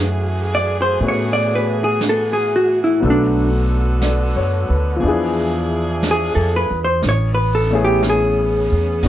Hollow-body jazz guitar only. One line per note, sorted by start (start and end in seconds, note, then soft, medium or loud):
0.55 0.76 D5 medium
0.82 0.98 C5 medium
1.09 1.33 C#5 medium
1.33 1.67 D5 medium
1.55 1.77 B4 medium
1.84 2.00 G#4 medium
2.09 2.33 A4 medium
2.33 2.68 G#4 medium
2.56 2.78 F#4 medium
2.84 3.00 E4 medium
3.10 3.49 D4 medium
6.11 6.35 G#4 medium
6.35 6.69 A4 medium
6.56 6.79 B4 medium
6.84 7.01 C5 medium
7.09 7.34 C#5 medium
7.34 7.69 B4 medium
7.55 7.78 A4 medium
7.84 8.01 G4 medium
8.10 9.02 G#4 medium